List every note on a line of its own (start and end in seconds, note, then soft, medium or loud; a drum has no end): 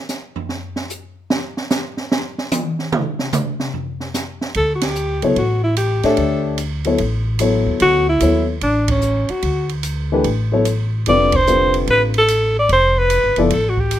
0.09 snare soft
0.09 hi-hat pedal medium
0.36 floor tom soft
0.49 snare soft
0.76 snare soft
0.89 hi-hat pedal medium
1.30 snare loud
1.57 snare soft
1.70 snare loud
1.70 hi-hat pedal medium
1.97 snare soft
2.12 snare loud
2.38 snare soft
2.51 hi-hat pedal medium
2.51 high tom loud
2.79 snare soft
2.92 mid tom loud
3.19 snare medium
3.33 hi-hat pedal medium
3.33 mid tom loud
3.60 snare medium
3.73 floor tom soft
4.00 snare soft
4.14 snare medium
4.14 hi-hat pedal medium
4.41 snare soft
4.54 5.19 D2 medium
4.54 4.72 A4 loud
4.54 ride soft
4.75 4.86 F#4 medium
4.81 5.23 G4 medium
4.81 snare medium
4.81 ride medium
4.95 hi-hat pedal soft
5.22 5.35 C#2 medium
5.22 5.35 F#3 medium
5.22 5.35 B3 medium
5.22 5.36 E4 medium
5.22 5.36 A4 medium
5.22 5.36 C#5 medium
5.22 ride soft
5.36 6.00 A1 medium
5.36 5.62 F#4 medium
5.36 ride soft
5.63 5.76 E4 medium
5.77 6.07 G4 medium
5.77 hi-hat pedal medium
5.77 ride medium
6.03 6.17 A2 medium
6.03 6.56 A3 medium
6.03 6.56 D4 medium
6.03 6.56 G4 medium
6.03 6.45 A4 medium
6.03 6.56 C#5 medium
6.03 6.56 E5 medium
6.03 snare soft
6.03 ride soft
6.17 6.95 D2 medium
6.17 ride soft
6.58 hi-hat pedal soft
6.58 ride medium
6.84 6.98 F#3 medium
6.84 6.98 B3 medium
6.84 6.98 E4 medium
6.84 6.99 A4 medium
6.84 6.99 C#5 medium
6.84 ride soft
6.98 7.63 A1 medium
6.98 ride soft
7.39 8.02 F#3 medium
7.39 8.02 B3 soft
7.39 8.03 E4 medium
7.39 8.03 A4 medium
7.39 8.03 C#5 medium
7.39 hi-hat pedal medium
7.39 ride medium
7.66 7.79 D#2 medium
7.80 8.19 D2 medium
7.80 8.06 F#4 loud
7.80 ride medium
8.09 8.46 E4 loud
8.20 8.59 D#2 medium
8.20 8.45 F#3 medium
8.20 8.46 B3 soft
8.20 8.46 E4 soft
8.20 8.46 A4 soft
8.20 8.46 C#5 medium
8.20 hi-hat pedal medium
8.20 ride medium
8.61 9.25 A1 medium
8.61 8.87 D4 medium
8.61 ride soft
8.88 9.32 C#4 medium
8.88 kick medium
8.88 ride medium
9.01 hi-hat pedal medium
9.29 9.71 F#4 medium
9.29 muted upright bass stroke soft
9.29 ride soft
9.43 10.21 D2 medium
9.43 ride soft
9.69 ride soft
9.83 hi-hat pedal medium
9.83 ride medium
10.12 10.24 E3 medium
10.12 10.24 A3 medium
10.12 10.25 D4 medium
10.12 10.25 G4 medium
10.12 10.25 B4 medium
10.24 11.02 A1 medium
10.24 ride soft
10.52 10.64 F#3 medium
10.52 10.65 B3 medium
10.52 10.65 E4 soft
10.52 10.65 A4 medium
10.52 10.65 C#5 medium
10.65 hi-hat pedal medium
10.65 ride medium
11.06 11.84 F1 medium
11.06 11.31 D3 medium
11.06 11.32 G3 soft
11.06 11.32 C4 medium
11.06 11.32 F4 medium
11.06 11.32 B4 medium
11.06 11.37 D5 loud
11.06 ride medium
11.32 11.75 C5 loud
11.32 kick medium
11.32 ride medium
11.47 12.09 D3 soft
11.47 12.10 G3 medium
11.47 12.10 C4 soft
11.47 12.10 F4 soft
11.47 12.10 B4 medium
11.47 hi-hat pedal medium
11.74 ride soft
11.87 12.66 A1 medium
11.87 12.02 B4 medium
11.87 ride soft
12.14 12.54 A4 medium
12.14 ride soft
12.28 hi-hat pedal soft
12.28 ride medium
12.59 12.70 D5 medium
12.69 13.20 F1 medium
12.69 13.00 C5 loud
12.69 ride medium
12.98 13.38 B4 loud
13.10 hi-hat pedal medium
13.10 ride medium
13.24 13.36 G1 medium
13.36 13.50 F#1 medium
13.36 13.50 F3 medium
13.36 13.50 B3 medium
13.36 13.50 E4 medium
13.36 13.51 A4 medium
13.36 13.51 D5 medium
13.36 ride soft
13.50 13.99 A1 medium
13.50 13.71 A4 medium
13.50 ride medium
13.69 13.81 F#4 medium
13.77 13.99 G4 loud
13.77 kick medium
13.91 hi-hat pedal medium
13.91 ride medium